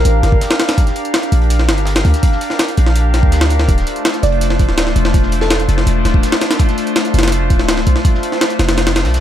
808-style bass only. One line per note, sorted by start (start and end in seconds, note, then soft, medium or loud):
0.05 0.21 A1 loud
0.23 0.40 G1 medium
1.32 1.70 A#1 loud
1.69 2.04 G1 medium
2.05 2.13 D2 loud
2.78 3.25 A#1 loud
3.23 3.67 D2 loud
3.69 3.85 D1 loud
4.23 4.70 F1 medium
4.69 4.94 D1 loud
4.96 5.67 E1 loud
5.69 5.85 F1 medium
5.87 6.03 E1 loud
6.05 6.21 D1 medium
7.14 7.52 F1 loud
7.50 7.85 D1 medium
7.87 7.95 B1 medium
8.59 9.06 F1 medium
9.05 9.20 B1 loud